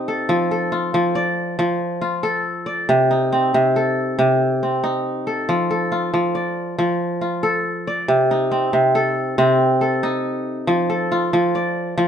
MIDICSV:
0, 0, Header, 1, 2, 480
1, 0, Start_track
1, 0, Tempo, 432588
1, 330, Time_signature, 12, 3, 24, 8
1, 13403, End_track
2, 0, Start_track
2, 0, Title_t, "Kora"
2, 0, Program_c, 0, 46
2, 0, Note_on_c, 0, 48, 84
2, 0, Note_on_c, 0, 60, 57
2, 0, Note_on_c, 0, 63, 74
2, 89, Note_on_c, 0, 69, 59
2, 321, Note_on_c, 0, 53, 86
2, 385, Note_off_c, 0, 48, 0
2, 564, Note_off_c, 0, 69, 0
2, 569, Note_on_c, 0, 69, 57
2, 799, Note_on_c, 0, 65, 66
2, 1031, Note_off_c, 0, 53, 0
2, 1044, Note_on_c, 0, 53, 82
2, 1279, Note_on_c, 0, 74, 64
2, 1346, Note_off_c, 0, 63, 0
2, 1368, Note_off_c, 0, 60, 0
2, 1748, Note_off_c, 0, 53, 0
2, 1761, Note_on_c, 0, 53, 81
2, 2031, Note_off_c, 0, 69, 0
2, 2231, Note_off_c, 0, 65, 0
2, 2235, Note_on_c, 0, 65, 60
2, 2476, Note_on_c, 0, 69, 76
2, 2509, Note_off_c, 0, 74, 0
2, 2952, Note_on_c, 0, 74, 57
2, 3205, Note_on_c, 0, 48, 85
2, 3262, Note_off_c, 0, 53, 0
2, 3447, Note_on_c, 0, 63, 60
2, 3514, Note_off_c, 0, 74, 0
2, 3689, Note_on_c, 0, 60, 67
2, 3915, Note_off_c, 0, 65, 0
2, 3918, Note_off_c, 0, 48, 0
2, 3931, Note_on_c, 0, 48, 79
2, 3938, Note_off_c, 0, 69, 0
2, 4173, Note_on_c, 0, 69, 64
2, 4631, Note_off_c, 0, 48, 0
2, 4645, Note_on_c, 0, 48, 84
2, 5131, Note_off_c, 0, 60, 0
2, 5135, Note_on_c, 0, 60, 56
2, 5247, Note_off_c, 0, 63, 0
2, 5365, Note_on_c, 0, 63, 74
2, 5635, Note_off_c, 0, 69, 0
2, 5846, Note_on_c, 0, 69, 60
2, 6089, Note_on_c, 0, 53, 81
2, 6141, Note_off_c, 0, 48, 0
2, 6326, Note_off_c, 0, 69, 0
2, 6331, Note_on_c, 0, 69, 62
2, 6566, Note_on_c, 0, 65, 62
2, 6795, Note_off_c, 0, 53, 0
2, 6808, Note_on_c, 0, 53, 77
2, 7044, Note_on_c, 0, 74, 58
2, 7111, Note_off_c, 0, 63, 0
2, 7133, Note_off_c, 0, 60, 0
2, 7515, Note_off_c, 0, 53, 0
2, 7529, Note_on_c, 0, 53, 76
2, 7793, Note_off_c, 0, 69, 0
2, 8000, Note_off_c, 0, 65, 0
2, 8005, Note_on_c, 0, 65, 57
2, 8244, Note_on_c, 0, 69, 72
2, 8274, Note_off_c, 0, 74, 0
2, 8737, Note_on_c, 0, 74, 57
2, 8970, Note_on_c, 0, 48, 85
2, 9022, Note_off_c, 0, 53, 0
2, 9220, Note_on_c, 0, 63, 59
2, 9287, Note_off_c, 0, 74, 0
2, 9447, Note_on_c, 0, 60, 62
2, 9675, Note_off_c, 0, 48, 0
2, 9684, Note_off_c, 0, 65, 0
2, 9688, Note_on_c, 0, 48, 76
2, 9706, Note_off_c, 0, 69, 0
2, 9931, Note_on_c, 0, 69, 69
2, 10396, Note_off_c, 0, 48, 0
2, 10408, Note_off_c, 0, 60, 0
2, 10409, Note_on_c, 0, 48, 87
2, 10412, Note_on_c, 0, 60, 68
2, 10882, Note_off_c, 0, 69, 0
2, 10886, Note_on_c, 0, 69, 64
2, 11021, Note_off_c, 0, 63, 0
2, 11130, Note_on_c, 0, 63, 81
2, 11844, Note_on_c, 0, 53, 88
2, 11905, Note_off_c, 0, 48, 0
2, 12085, Note_off_c, 0, 69, 0
2, 12090, Note_on_c, 0, 69, 62
2, 12335, Note_on_c, 0, 65, 70
2, 12409, Note_off_c, 0, 60, 0
2, 12561, Note_off_c, 0, 53, 0
2, 12574, Note_on_c, 0, 53, 85
2, 12816, Note_on_c, 0, 74, 61
2, 12882, Note_off_c, 0, 63, 0
2, 13274, Note_off_c, 0, 53, 0
2, 13288, Note_on_c, 0, 53, 85
2, 13403, Note_off_c, 0, 53, 0
2, 13403, Note_off_c, 0, 65, 0
2, 13403, Note_off_c, 0, 69, 0
2, 13403, Note_off_c, 0, 74, 0
2, 13403, End_track
0, 0, End_of_file